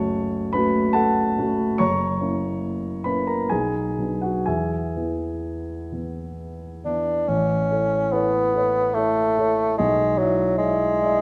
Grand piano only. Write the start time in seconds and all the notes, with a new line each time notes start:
Already playing: F#1 A3 C#4 F#4 C#5 A5 C#6
0.53 A3 C#4 F#4 B4 B5
0.93 A4 F#5 A5
1.38 A3 C#4 F#4
1.78 F#1 C#5 A#5 C#6
2.21 A#3 C#4 E4
3.04 A#3 C#4 E4 B4 B5
3.27 A#4 A#5
3.49 B1 G#4 G#5
3.99 F#3 B3 D4
4.21 F#4 F#5
4.46 E2 G#4 E5 G#5
4.96 E3 B3 E4
5.92 E3 B3 E4
6.85 E3 B3 E4
7.28 A1
7.70 E4 A4 C#5
8.12 E4 A4 C#5
8.54 E4 A4 C#5
8.96 E4 A4 C#5
9.38 E4 A4 C#5
9.80 B1
10.20 E4 D5 E5
10.62 E4 D5 E5
11.02 E4 D5 E5